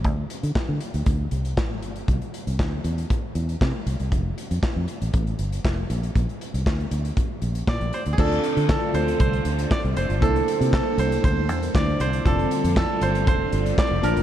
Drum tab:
CC |----------------|----------------|----------------|----------------|
HH |x-xx--xxx-xx--xx|xxxx--xxx-xx--xx|x-xx--xxxxxx--xx|xxxx-xxxx-xx-xxx|
CP |----x-------x---|----x-------x---|----x-------x---|----x-------x---|
SD |----o-------o---|----o-------o---|----o-------o---|----o-------o---|
BD |o---o---o---o---|o---o---o---o---|o---o---o---o---|o---o---o---o---|

CC |x---------------|----------------|----------------|
HH |-xxx--xxxxxx-xxx|xxxx--xxx-xx--xx|xxxx--xxx-xx--xx|
CP |----x-------x---|----x-------x---|----x-------x---|
SD |----o-------o---|----o-------o---|----o-------o---|
BD |o---o---o---o---|o---o---o---o---|o---o---o---o---|